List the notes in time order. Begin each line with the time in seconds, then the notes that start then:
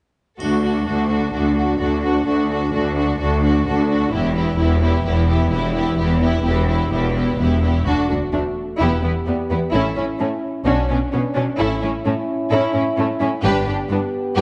0.39 D2 D4 F#4 A4, triangle
0.63 D4 F#4 A4
0.86 D2 D4 F#4 A4
1.09 D4 F#4 A4
1.33 D2 D4 F#4 A4
1.56 D4 F#4 A4
1.79 D2 D4 F#4 A4
2.03 D4 F#4 A4
2.27 D2 D4 F#4 A4
2.50 D4 F#4 A4
2.73 D2 D4 F#4 A4
2.97 D4 F#4 A4
3.19 D2 D4 F#4 A4
3.44 D4 F#4 A4
3.66 D2 D4 F#4 A4
3.90 D4 F#4 A4
4.12 E1 E2 B3 E4 G4
4.36 B3 E4 G4
4.58 E1 E2 B3 E4 G4
4.82 B3 E4 G4
5.05 E1 E2 B3 E4 G4
5.28 B3 E4 G4
5.51 E1 E2 B3 E4 G4
5.75 B3 E4 G4
5.98 E1 E2 B3 E4 G4
6.21 B3 E4 G4
6.43 E1 E2 B3 E4 G4
6.68 B3 E4 G4
6.91 E1 E2 B3 E4 G4
7.15 B3 E4 G4
7.38 E1 E2 B3 E4 G4
7.62 B3 E4 G4
7.86 D2 A3 D4 F#4 A4
8.09 D2 D4 F#4
8.33 D2 A3 D4
8.79 E1 E2 B3 E4 G4
9.03 E2 B3 E4
9.26 E2 G3 B3
9.50 E2 B3 E4
9.73 A1 A2 C#4 E4 A4
9.96 A2 C#4 E4
10.20 A2 A3 C#4
10.65 B1 B2 C#4 D4 F#4
10.88 B2 C#4 D4
11.12 B2 B3 C#4
11.35 B2 C#4 D4
11.57 A1 A2 C#4 E4 A4
11.81 A2 C#4 E4
12.05 A2 A3 C#4
12.50 A2 C#4 E4 A4
12.74 A2 C#4 E4
12.96 A2 A3 C#4
13.20 A2 C#4 E4
13.43 G1 G2 B3 D4 G4 B4
13.66 G2 D4 G4
13.89 G2 B3 D4
14.36 G2 G4 B4